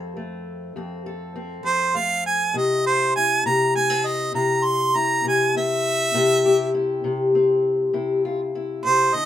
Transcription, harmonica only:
1.66 1.98 C5 loud
1.97 2.26 F5 medium
2.26 2.59 G#5 medium
2.57 2.86 D#5 medium
2.86 3.15 C5 medium
3.16 3.45 G#5 medium
3.46 3.75 A#5 medium
3.75 4.08 G#5 medium
4.06 4.34 D#5 medium
4.35 4.67 A#5 medium
4.65 4.99 C6 medium
4.97 5.25 A#5 medium
5.28 5.56 G#5 medium
5.57 6.72 E5 loud
8.85 9.17 C5 loud
9.15 9.26 D#5 loud

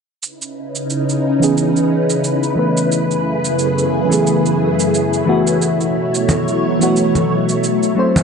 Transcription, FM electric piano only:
1.40 2.53 E3 medium
1.40 2.54 B3 medium
1.40 2.54 C#4 medium
1.44 2.55 G#4 medium
2.55 4.06 E3 medium
2.55 4.07 A3 medium
2.55 4.07 B3 medium
2.55 4.08 B4 medium
4.09 5.23 E3 medium
4.09 5.23 A3 medium
4.09 5.24 B3 medium
4.09 5.25 G#4 medium
5.26 6.76 E3 medium
5.26 6.77 A3 medium
5.26 6.77 B3 medium
5.26 6.78 F#4 medium
6.79 7.93 E3 medium
6.79 7.93 A3 medium
6.79 7.94 B3 medium
6.79 7.95 F#4 loud
7.95 8.23 F#3 medium
7.95 8.23 A3 medium
7.95 8.23 C4 medium
7.99 8.23 C5 medium

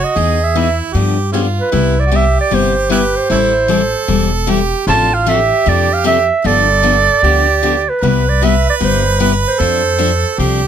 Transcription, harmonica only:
0.00 0.19 F#4 medium
0.17 0.59 G#4 medium
0.57 0.94 E4 medium
0.93 1.32 G4 medium
1.32 1.40 G#3 soft
1.32 1.41 C#4 soft
1.32 1.70 F4 medium
1.72 2.04 E4 medium
2.06 2.13 F#4 medium
2.12 2.90 G4 medium
2.91 2.97 B3 medium
2.91 3.00 E4 medium
2.91 3.28 G4 loud
3.30 3.37 A3 medium
3.30 3.39 C#4 medium
3.30 3.67 E4 medium
3.70 4.51 A4 medium
4.49 4.87 G4 loud
4.87 4.94 G#3 medium
4.87 4.95 C#4 medium
4.87 5.24 F4 medium
5.28 6.28 G4 medium
6.45 7.20 A4 loud
7.23 7.83 G4 medium
8.01 9.61 B4 loud
9.59 10.40 A4 loud
10.39 10.68 G4 medium

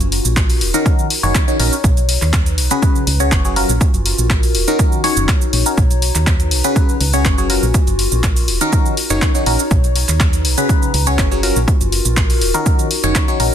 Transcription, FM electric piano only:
0.74 1.08 D#3 medium
0.74 1.08 C#4 medium
0.74 1.08 D#4 medium
0.74 1.08 F#4 medium
0.74 1.08 A#4 loud
1.23 1.45 D#3 loud
1.23 1.45 C#4 medium
1.23 1.45 D#4 medium
1.23 1.45 F#4 medium
1.23 1.45 C#5 loud
1.48 1.58 D#3 medium
1.48 1.58 C#4 medium
1.48 1.58 D#4 medium
1.48 1.58 F#4 medium
1.48 1.58 C#5 medium
1.60 1.75 C#4 medium
1.60 1.75 D#4 medium
1.60 1.75 F#4 medium
1.60 1.75 A#4 medium
2.71 3.04 C#3 medium
2.71 3.04 C#4 medium
2.71 3.04 F#4 medium
2.71 3.04 G#4 medium
2.71 3.04 B4 loud
3.20 3.42 C#3 medium
3.20 3.42 C#4 medium
3.20 3.42 F#4 medium
3.20 3.42 G#4 medium
3.20 3.42 C#5 loud
3.45 3.55 F#3 medium
3.45 3.55 C#4 medium
3.45 3.55 F#4 medium
3.45 3.55 G#4 medium
3.45 3.55 C#5 medium
3.56 3.72 F#3 medium
3.56 3.72 C#4 medium
3.56 3.72 F4 medium
3.56 3.72 F#4 medium
3.56 3.72 A#4 loud
4.68 5.01 D#3 medium
4.68 5.01 C#4 medium
4.68 5.01 D#4 medium
4.68 5.01 F#4 medium
4.68 5.01 A#4 loud
5.04 5.28 D#3 medium
5.04 5.28 C#4 medium
5.04 5.28 D#4 medium
5.04 5.28 F#4 medium
5.04 5.28 C#5 loud
5.66 5.76 C#4 medium
5.66 5.76 D#4 medium
5.66 5.76 F#4 medium
5.66 5.76 A#4 medium
6.64 6.98 C#3 medium
6.64 6.98 C#4 medium
6.64 6.98 F#4 medium
6.64 6.98 G#4 medium
6.64 6.98 B4 loud
7.14 7.35 C#3 loud
7.14 7.35 C#4 medium
7.14 7.35 F#4 medium
7.14 7.35 G#4 medium
7.14 7.35 C#5 loud
7.38 7.48 F#3 medium
7.38 7.48 C#4 medium
7.38 7.48 F#4 medium
7.38 7.48 G#4 medium
7.38 7.48 C#5 medium
7.50 7.65 F#3 medium
7.50 7.65 C#4 medium
7.50 7.65 F4 medium
7.50 7.65 F#4 medium
7.50 7.65 A#4 medium
8.61 8.95 D#3 medium
8.61 8.95 C#4 medium
8.61 8.95 D#4 medium
8.61 8.95 F#4 medium
8.61 8.95 A#4 loud
9.10 9.32 D#3 loud
9.10 9.32 C#4 medium
9.10 9.32 D#4 medium
9.10 9.32 F#4 medium
9.10 9.32 C#5 loud
9.35 9.45 D#3 medium
9.35 9.45 C#4 medium
9.35 9.45 D#4 medium
9.35 9.45 F#4 medium
9.35 9.45 C#5 medium
9.46 9.62 C#4 medium
9.46 9.62 D#4 medium
9.46 9.62 F#4 medium
9.46 9.62 A#4 loud
10.58 10.91 C#3 medium
10.58 10.91 C#4 medium
10.58 10.91 F#4 medium
10.58 10.91 G#4 medium
10.58 10.91 B4 loud
11.07 11.28 C#3 loud
11.07 11.28 C#4 medium
11.07 11.28 F#4 medium
11.07 11.28 G#4 medium
11.07 11.28 C#5 loud
11.31 11.41 F#3 medium
11.31 11.41 C#4 medium
11.31 11.41 F#4 medium
11.31 11.41 G#4 medium
11.31 11.41 C#5 medium
11.43 11.59 F#3 medium
11.43 11.59 C#4 medium
11.43 11.59 F4 medium
11.43 11.59 F#4 medium
11.43 11.59 A#4 loud
12.54 12.88 D#3 medium
12.54 12.88 C#4 medium
12.54 12.88 D#4 medium
12.54 12.88 F#4 medium
12.54 12.88 A#4 loud
13.04 13.25 D#3 medium
13.04 13.25 C#4 medium
13.04 13.25 D#4 medium
13.04 13.25 F#4 medium
13.04 13.25 C#5 loud
13.28 13.38 D#3 medium
13.28 13.38 C#4 medium
13.28 13.38 D#4 medium
13.28 13.38 F#4 medium
13.28 13.38 C#5 medium
13.40 13.55 C#4 medium
13.40 13.55 D#4 medium
13.40 13.55 F#4 medium
13.40 13.55 A#4 loud

